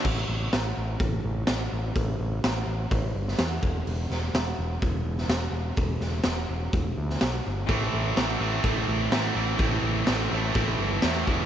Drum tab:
CC |x---------------|----------------|----------------|----------------|
HH |----o---o---o---|o---o---o---o---|o---o---o---o---|o---o---o---o---|
SD |----o-------o---|----o------oo---|--o-o------oo---|--o-o------oo---|
BD |o-------o-------|o-------o-----o-|--------o-------|o-------o-------|

CC |----------------|----------------|
HH |o---o---o---o---|o---o---o---o---|
SD |----o-------o---|----o-------o---|
BD |o-------o-------|o-------o-----o-|